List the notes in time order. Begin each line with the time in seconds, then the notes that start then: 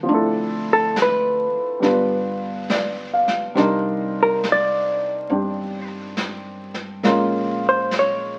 Already playing: A#3 D4
0.03 F3 C4
0.09 D2 D4 E4, brush sweep
0.14 A4
0.73 A4
0.96 snare, hi-hat pedal
1.02 B4
1.53 muted upright bass stroke
1.80 G1 G3 B3 D4 F4, brush sweep, snare
1.85 B4
2.70 D5, snare, hi-hat pedal
3.13 F5
3.28 snare
3.55 C2 G3 C4 D4 D#4, brush sweep, snare
3.60 A#4
4.23 A#4
4.44 snare, hi-hat pedal
4.52 D5
5.29 G2 C4 D4 G4, brush sweep
6.17 snare, hi-hat pedal
6.74 snare
7.03 A#1 G#3 A#3 C#4 F4 A#4, brush sweep, snare
7.69 C5
7.91 snare, hi-hat pedal
7.99 C#5